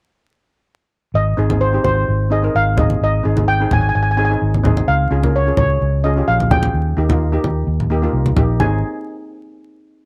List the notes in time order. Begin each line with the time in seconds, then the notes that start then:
1.14 G#1 D#5
1.37 G#1 C4 D#4 G#4
1.49 C4 D#4 G#4, high conga
1.61 C5
1.73 C4 D#4 G4
1.84 G#1 C5, high conga
2.08 G#1
2.30 C4 D#4 G#4 D#5
2.42 C4 D#4 A#4
2.55 G#1 F5
2.77 C4 D#4 G#4 D#5, high conga, low conga
2.90 high conga
3.01 G#1 D#5
3.23 G#1 C4 D#4 G#4
3.36 C4 D#4 G#4, high conga
3.48 G5
3.60 C4 D#4 G#4
3.71 G#1 G#5, high conga, low conga
3.81 G#5
3.89 G#5
3.95 G#1 G#5
4.03 G#5
4.11 G#5
4.17 C4 D#4 G#4 G#5
4.25 G#5
4.30 C4 D#4 G#4
4.42 G#1
4.54 high conga
4.63 C4 D#4 G#4, high conga, low conga
4.77 high conga
4.88 C#2 F5
5.11 C#2 C#4 F4 G#4
5.22 C#4 F4 A#4, high conga
5.36 C#5
5.46 C#4 F4 G#4
5.57 C#2 C#5, high conga, low conga
5.81 C#2
6.04 C#4 F4 G#4 D#5
6.16 C#4 F4 G4
6.28 A#1 F5
6.40 high conga
6.50 C#4 F4 G#4 G5, high conga, low conga
6.63 high conga
6.74 D#2
6.97 D#2 A#3 D#4 G4
7.09 A#3 D#4 F4, high conga
7.32 A#3 D#4 G4
7.44 D#2, high conga
7.67 D#2
7.80 low conga
7.90 A#3 D#4 G4
8.02 A#3 D#4 F4
8.13 C2
8.26 high conga
8.36 A#1 A#3 D#4 G4, high conga, low conga
8.60 G#1 C4 D#4 G#4 G#5, high conga